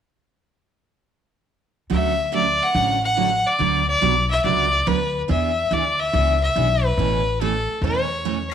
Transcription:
1.90 D2 D3 F#3 A3 C#4 F#4 E5
2.32 D3 F#3 A3 C#4 F#4 D5
2.63 F#5
2.74 A1 D3 F#3 A3 C#4 F#4
3.05 F#5
3.17 D3 F#3 A3 C#4 F#4
3.47 D5
3.59 D2 D3 F#3 B3 F#4 B4
3.88 D5
4.01 B1 D3 F#3 B3 F#4 B4
4.31 E5
4.44 C#2 D3 F#3 B3 F#4 B4 D5
4.87 D2 D3 F#3 B3 F#4 B4
5.28 E2 E3 B3 D4 G#4 E5
5.71 D2 E3 B3 D4 G#4 D5
6.00 E5
6.13 C#2 E3 B3 D4 G#4
6.43 E5
6.56 B1 E3 B3 D4 G#4
6.85 B4
6.97 A1 B2 E3 A3 C#4 A4
7.41 B2 E3 A3 C#4 A4
7.81 E2 B2 E3 A3 C#4 A4 C#5
8.25 B2 E3 A3 C#4 A4

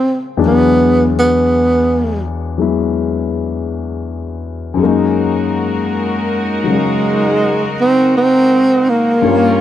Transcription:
Already playing: A#2 C#3 F3 G#3 C4 C5
0.37 E2 E3 F#3 G#3 D4
0.46 B3
1.19 B3
2.58 F#3 G#3 B3 E4
4.74 F#2 F#3
4.79 G#3 A#3 D#4 F#4 A#4
4.85 D#4
6.64 C#3 F#3 G#3
6.71 G#3
7.81 C4
8.17 C4
8.90 A#3
9.22 G2 G3 A#3 C#4 F4 A#4 C#5
9.28 F4

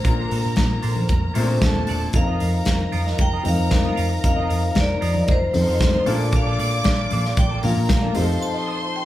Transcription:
Already playing: A#2 A#3 D4 A#4 C5 A#5
0.04 A#1 A#2 A#3 D4 F4, muted clean electric guitar stroke, kick, closed hi-hat
0.20 D4 A4 C5
0.31 A#2 D4 A4 C5, open hi-hat, muted conga
0.45 A#2, muted clean electric guitar stroke
0.56 A#1, muted clean electric guitar stroke, kick, snare, closed hi-hat, high conga
0.71 muted clean electric guitar stroke
0.82 A#2 D4 A4 C5, open hi-hat
0.96 D4 A4 C5, low conga
1.08 F2, muted clean electric guitar stroke, kick, closed hi-hat, muted conga
1.22 muted clean electric guitar stroke
1.34 A#2 A3 C4 D4 A4 C5, open hi-hat, muted conga
1.42 D4
1.49 D4 A4 C5
1.62 D#1 A4 A5, kick, snare, closed hi-hat, high conga
1.75 muted clean electric guitar stroke, high conga
1.87 E1 D4 A4 D5, open hi-hat
2.01 muted clean electric guitar stroke
2.13 F1 F3 C4 D#4 A4 A#4 F5 A#5, muted clean electric guitar stroke, kick, closed hi-hat
2.21 A#4
2.27 F1 F4 A#4 D#5
2.40 F2 F4 A#4 D#5, open hi-hat
2.55 muted clean electric guitar stroke
2.65 F1, muted clean electric guitar stroke, kick, snare, closed hi-hat, high conga
2.81 muted clean electric guitar stroke
2.92 F2 F4 A#4 D#5, open hi-hat, low conga
3.06 F4 A#4 D#5, snare
3.18 F1 G5, muted clean electric guitar stroke, kick, closed hi-hat, muted conga
3.33 F4 A#4 D#5
3.43 F2 F3 C4 D#4 A#4, muted clean electric guitar stroke, open hi-hat, muted conga, low conga
3.48 F5
3.59 F2, muted clean electric guitar stroke
3.71 muted clean electric guitar stroke, kick, snare, closed hi-hat, high conga
3.84 F4 A#4 D#5, high conga
3.96 F2 F4 A#4 F5, open hi-hat
4.09 muted clean electric guitar stroke
4.22 F1 F3 C4 D#4 A#4 F5, muted clean electric guitar stroke, kick, closed hi-hat
4.36 F1 F4 A#4 D#5
4.48 F2 F4 A#4 D#5, open hi-hat
4.63 muted clean electric guitar stroke
4.74 F1, muted clean electric guitar stroke, kick, snare, closed hi-hat, high conga
4.80 D5
4.89 muted clean electric guitar stroke
5.01 F2 F4 A#4 D#5, open hi-hat
5.14 F4 A#4 D#5, low conga
5.27 F1 F4 A#4 D#5, kick, closed hi-hat, muted conga
5.31 C5
5.41 muted clean electric guitar stroke
5.53 F2 F3 C4 D#4 A4 C5 C6, muted clean electric guitar stroke, open hi-hat, muted conga, low conga
5.61 A#4
5.68 F2 F4 A#4 D#5
5.80 F1, muted clean electric guitar stroke, kick, snare, closed hi-hat, high conga
5.94 F4 A#4 D#5, high conga
6.06 A#2 A#3 D4 F4 A4 D5 F5 D6, open hi-hat
6.20 muted clean electric guitar stroke
6.32 F5, muted clean electric guitar stroke, kick, closed hi-hat
6.46 A#1 F4 A4 D5
6.58 A#2 F4 A4 D5, open hi-hat, muted conga
6.73 muted clean electric guitar stroke
6.84 A#1, muted clean electric guitar stroke, kick, snare, closed hi-hat, high conga
6.99 muted clean electric guitar stroke
7.10 A#2 F4 A4 D5, open hi-hat, low conga
7.25 F4 A4 D5, snare
7.37 A#1 G5, kick, closed hi-hat, muted conga
7.50 F4 A4 D5
7.63 A#2 A#3 D4 F4 A#4 F5 A#5, muted clean electric guitar stroke, open hi-hat, muted conga, low conga
7.77 A#2, muted clean electric guitar stroke
7.89 A#1, muted clean electric guitar stroke, kick, snare, closed hi-hat, high conga
8.02 F4 A4 D5, high conga
8.14 F2 F3 C4 D#4 F4 G4 A4 C5 F5 C6, open hi-hat
8.22 A4
8.29 muted clean electric guitar stroke
8.41 A5, muted clean electric guitar stroke
8.54 F4 A4 D#5
8.67 F4 A4 D#5
8.82 muted clean electric guitar stroke
8.95 G5, muted clean electric guitar stroke

